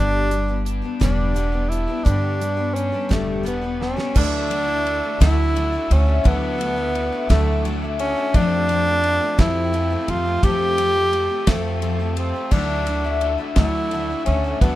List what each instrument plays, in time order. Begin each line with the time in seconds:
Already playing: upright bass G1, twelve-string acoustic guitar G2 D3 G3 B3 D4 G4, overdriven electric guitar G2 D4, tenor saxophone D4, tonewheel organ B4 G5 D6
0.31 twelve-string acoustic guitar G3 B3 D4 G4, closed hi-hat
0.48 twelve-string acoustic guitar G3 B3 D4 G4
0.65 overdriven electric guitar D4, closed hi-hat
0.82 twelve-string acoustic guitar G3 B3 D4 G4
1.00 upright bass E1, twelve-string acoustic guitar G2 D3 G3 B3 D4 G4, overdriven electric guitar G3, tenor saxophone D4, kick, snare, closed hi-hat
1.34 twelve-string acoustic guitar G3 B3 D4 G4, overdriven electric guitar B3, closed hi-hat
1.52 twelve-string acoustic guitar G3 B3 D4 G4
1.69 overdriven electric guitar D4, tenor saxophone E4, closed hi-hat
1.88 twelve-string acoustic guitar G3 B3 D4 G4
2.04 twelve-string acoustic guitar G2 D3 G3 B3 D4 G4, overdriven electric guitar G2, upright bass G2, tenor saxophone D4, tonewheel organ C#6, kick, closed hi-hat
2.40 twelve-string acoustic guitar G3 B3 D4 G4, closed hi-hat
2.57 twelve-string acoustic guitar G3 B3 D4 G4
2.74 tenor saxophone C#4, overdriven electric guitar D4, closed hi-hat
2.92 twelve-string acoustic guitar G3 B3 D4 G4
3.09 upright bass E1, twelve-string acoustic guitar G2 D3 G3 B3 D4 G4, overdriven electric guitar G3, tenor saxophone A3, kick, snare, closed hi-hat
3.43 twelve-string acoustic guitar G3 B3 D4 G4, overdriven electric guitar B3, closed hi-hat
3.47 tenor saxophone B3
3.62 twelve-string acoustic guitar G3 B3 D4 G4
3.81 tenor saxophone C#4, overdriven electric guitar D4, snare
3.96 twelve-string acoustic guitar G3 B3 D4 G4, snare
4.15 upright bass D2, twelve-string acoustic guitar D3 F#3 A3 D4 E4, overdriven electric guitar D3 D4 F#4, tenor saxophone D4, tonewheel organ E5 F#5 E6, kick, crash
4.19 overdriven electric guitar A4
4.49 twelve-string acoustic guitar F#3 A3 D4 E4, overdriven electric guitar F#4 A4, ride
4.53 overdriven electric guitar D4
4.68 twelve-string acoustic guitar A3 D4 E4
4.84 overdriven electric guitar D3 D4 F#4 A4, ride
5.03 twelve-string acoustic guitar A3 D4 E4
5.19 upright bass D2, twelve-string acoustic guitar D3 F#3 A3 D4 E4, overdriven electric guitar D4 F#4 A4, tenor saxophone E4, kick, snare, ride
5.54 overdriven electric guitar D3 D4 F#4 A4, twelve-string acoustic guitar F#3 A3, ride
5.58 twelve-string acoustic guitar D4 E4
5.72 twelve-string acoustic guitar A3 D4 E4
5.89 upright bass D2, tenor saxophone C#4, overdriven electric guitar D4 F#4 A4, ride
6.07 twelve-string acoustic guitar A3 D4 E4
6.24 upright bass D2, twelve-string acoustic guitar D3 F#3 A3 D4 E4, overdriven electric guitar D3 D4 F#4 A4, tenor saxophone B3, tonewheel organ D6, kick, ride
6.58 twelve-string acoustic guitar F#3 A3 E4, overdriven electric guitar F#4 A4, ride
6.62 overdriven electric guitar D4
6.76 twelve-string acoustic guitar A3 D4 E4
6.94 overdriven electric guitar D3 D4 F#4 A4, ride
7.12 twelve-string acoustic guitar A3 D4 E4
7.29 upright bass D2, twelve-string acoustic guitar D3 F#3 A3 D4 E4, tenor saxophone A3, overdriven electric guitar F#4 A4, kick, snare, ride
7.33 overdriven electric guitar D4
7.63 overdriven electric guitar D3 D4 F#4 A4, twelve-string acoustic guitar F#3 A3 D4, ride
7.67 twelve-string acoustic guitar E4
7.82 twelve-string acoustic guitar A3 D4 E4
7.98 tenor saxophone C#4, overdriven electric guitar D4 F#4 A4, ride
8.17 twelve-string acoustic guitar A3 D4 E4
8.33 upright bass F2, overdriven electric guitar F3 A3 C4 F4 A4, twelve-string acoustic guitar F3 A3 C4 G4, tenor saxophone D4, tonewheel organ G4 G5 A5, kick, ride
8.67 twelve-string acoustic guitar F3 A3, overdriven electric guitar C4 F4 A4, ride
8.71 twelve-string acoustic guitar C4 G4
8.87 twelve-string acoustic guitar A3 C4 G4
9.02 overdriven electric guitar A3 C4 F4 A4, ride
9.21 twelve-string acoustic guitar A3 C4 G4
9.38 upright bass F2, twelve-string acoustic guitar F3 A3 C4 G4, overdriven electric guitar C4 F4 A4, tenor saxophone E4, kick, snare, ride
9.73 twelve-string acoustic guitar F3 A3 C4 G4, overdriven electric guitar A3 C4 F4 A4, ride
9.90 twelve-string acoustic guitar A3 C4 G4
10.07 upright bass F2, overdriven electric guitar C4 F4 A4, tenor saxophone F4, ride
10.26 twelve-string acoustic guitar A3 C4 G4
10.42 upright bass F2, overdriven electric guitar F3 A3 C4 F4 A4, twelve-string acoustic guitar F3 A3 C4 G4, tenor saxophone G4, kick, ride
10.77 twelve-string acoustic guitar F3 A3 G4, overdriven electric guitar C4 F4 A4, ride
10.95 twelve-string acoustic guitar A3 C4 G4
11.12 overdriven electric guitar A3 C4 F4 A4, ride
11.29 twelve-string acoustic guitar A3 C4 G4
11.46 upright bass F2, twelve-string acoustic guitar F3 A3 C4 G4, tenor saxophone A3, overdriven electric guitar C4 F4 A4, kick, snare, ride
11.81 twelve-string acoustic guitar F3 A3 C4 G4, overdriven electric guitar A3 C4 F4 A4, ride
12.00 twelve-string acoustic guitar A3 C4 G4
12.15 overdriven electric guitar C4 F4 A4, tenor saxophone C4, ride
12.34 twelve-string acoustic guitar A3 C4 G4
12.50 upright bass D2, overdriven electric guitar D3 D4 F#4 A4, twelve-string acoustic guitar D3 F#3 A3 D4 E4, tenor saxophone D4, tonewheel organ E5 F#5 E6, kick, crash
12.86 twelve-string acoustic guitar F#3 A3 D4 E4, overdriven electric guitar D4 F#4 A4, ride
13.04 twelve-string acoustic guitar A3 D4 E4
13.21 overdriven electric guitar D3 D4 F#4, ride
13.25 overdriven electric guitar A4
13.38 twelve-string acoustic guitar A3 D4 E4
13.55 upright bass D2, twelve-string acoustic guitar D3 F#3 A3 D4 E4, overdriven electric guitar D4 F#4 A4, tenor saxophone E4, kick, snare, ride
13.90 overdriven electric guitar D3 D4 F#4 A4, twelve-string acoustic guitar F#3 A3 D4, ride
13.95 twelve-string acoustic guitar E4
14.10 twelve-string acoustic guitar A3 D4 E4
14.25 upright bass D2, tenor saxophone C#4, overdriven electric guitar D4 F#4 A4, ride
14.44 twelve-string acoustic guitar A3 D4 E4
14.60 upright bass D2, overdriven electric guitar D3 D4 F#4 A4, twelve-string acoustic guitar D3 F#3 A3 D4 E4, tenor saxophone B3, tonewheel organ D6, kick, ride